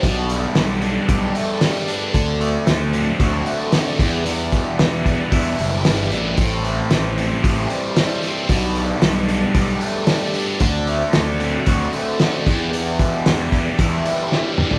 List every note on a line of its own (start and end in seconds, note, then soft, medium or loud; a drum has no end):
0.00 0.44 B1 medium
0.00 2.12 G3 medium
0.00 6.34 D4 medium
0.00 6.34 D5 medium
0.00 kick loud
0.00 open hi-hat medium
0.04 1.36 B2 medium
0.04 2.14 B3 medium
0.04 3.97 A4 medium
0.29 0.55 G3 medium
0.29 open hi-hat medium
0.55 0.98 B1 medium
0.55 1.61 G3 medium
0.55 snare loud
0.55 open hi-hat medium
0.82 1.88 D4 medium
0.82 open hi-hat soft
1.09 1.30 B1 medium
1.09 2.15 G4 medium
1.09 kick loud
1.09 open hi-hat medium
1.35 2.15 A3 medium
1.35 open hi-hat soft
1.61 2.14 G3 medium
1.61 snare loud
1.61 open hi-hat medium
1.88 2.94 D4 medium
1.88 open hi-hat soft
2.14 2.56 D2 loud
2.14 2.66 D3 medium
2.14 3.98 F#3 medium
2.14 3.98 C4 medium
2.14 kick loud
2.14 open hi-hat medium
2.41 3.45 A3 medium
2.41 open hi-hat soft
2.67 3.09 D2 medium
2.67 3.71 D3 medium
2.67 snare loud
2.67 open hi-hat medium
2.93 4.00 C4 medium
2.93 open hi-hat soft
3.20 3.41 D2 medium
3.20 4.00 F#4 medium
3.20 kick loud
3.20 open hi-hat medium
3.46 4.00 A3 medium
3.46 open hi-hat soft
3.72 4.00 D3 medium
3.72 snare loud
3.72 open hi-hat medium
3.99 4.24 E2 medium
3.99 4.61 E2 medium
3.99 10.58 G3 medium
3.99 8.46 E4 medium
3.99 6.36 B4 medium
3.99 kick loud
3.99 open hi-hat soft
4.25 5.58 E2 medium
4.25 open hi-hat medium
4.52 5.85 B2 medium
4.52 kick medium
4.52 open hi-hat soft
4.79 5.20 E2 medium
4.79 5.85 E3 medium
4.79 snare loud
4.79 open hi-hat medium
5.05 6.11 D4 medium
5.05 kick medium
5.05 open hi-hat soft
5.32 5.53 E2 medium
5.32 6.38 E4 medium
5.32 kick loud
5.32 open hi-hat medium
5.59 5.83 F#1 medium
5.59 6.41 G3 medium
5.59 open hi-hat medium
5.85 6.10 G1 medium
5.85 6.39 E3 medium
5.85 snare loud
5.85 open hi-hat medium
6.11 6.36 A1 medium
6.11 6.39 D4 medium
6.11 open hi-hat soft
6.37 6.79 A1 medium
6.37 7.70 A2 medium
6.37 8.49 C4 medium
6.37 10.58 A4 medium
6.37 8.48 C5 medium
6.37 kick loud
6.37 open hi-hat medium
6.64 6.90 E3 medium
6.64 open hi-hat soft
6.91 7.33 A1 medium
6.91 7.95 E3 medium
6.91 snare loud
6.91 open hi-hat medium
7.16 8.21 C4 medium
7.16 open hi-hat soft
7.43 7.65 A1 medium
7.43 8.49 G4 medium
7.43 kick loud
7.43 open hi-hat medium
7.70 8.50 G3 medium
7.70 open hi-hat soft
7.96 8.50 E3 medium
7.96 snare loud
7.96 open hi-hat medium
8.22 8.49 C4 medium
8.22 open hi-hat soft
8.49 8.91 B1 loud
8.49 9.82 B2 medium
8.49 10.60 B3 medium
8.49 14.79 D4 medium
8.49 12.44 D5 medium
8.49 kick loud
8.49 open hi-hat medium
8.76 9.01 G3 medium
8.76 open hi-hat soft
9.02 9.44 B1 medium
9.02 10.08 G3 medium
9.02 snare loud
9.02 open hi-hat medium
9.28 10.34 D4 medium
9.28 open hi-hat soft
9.54 9.76 B1 medium
9.54 10.61 G4 medium
9.54 kick loud
9.54 open hi-hat medium
9.81 10.61 A3 medium
9.81 open hi-hat medium
10.07 10.61 G3 medium
10.07 snare loud
10.07 open hi-hat medium
10.34 11.40 D4 medium
10.34 open hi-hat medium
10.60 11.02 D2 medium
10.60 11.13 D3 medium
10.60 12.45 F#3 medium
10.60 12.45 C4 medium
10.60 12.45 A4 medium
10.60 kick loud
10.60 open hi-hat medium
10.87 11.92 A3 medium
10.87 open hi-hat soft
11.13 11.56 D2 medium
11.13 12.19 D3 medium
11.13 snare loud
11.13 open hi-hat medium
11.40 12.47 C4 medium
11.40 open hi-hat soft
11.66 11.88 D2 medium
11.66 12.47 F#4 medium
11.66 kick loud
11.66 open hi-hat medium
11.93 12.47 A3 medium
11.93 open hi-hat soft
12.20 12.47 D3 medium
12.20 snare loud
12.20 open hi-hat medium
12.46 12.71 E2 medium
12.46 13.08 E2 medium
12.46 14.79 E3 medium
12.46 14.79 B3 medium
12.46 14.79 G4 medium
12.46 14.79 D5 medium
12.46 kick loud
12.46 open hi-hat soft
12.72 14.05 E2 medium
12.72 open hi-hat medium
12.99 14.32 B2 medium
12.99 kick medium
12.99 open hi-hat soft
13.26 13.68 E2 medium
13.26 14.31 E3 medium
13.26 snare loud
13.26 open hi-hat medium
13.52 14.57 D4 medium
13.52 kick medium
13.52 open hi-hat soft
13.79 14.00 E2 medium
13.79 14.79 E4 medium
13.79 kick loud
13.79 open hi-hat medium
14.05 14.79 G3 medium
14.05 open hi-hat medium
14.32 14.79 E3 medium
14.32 snare medium
14.58 14.79 D4 medium
14.58 mid tom medium
14.71 floor tom medium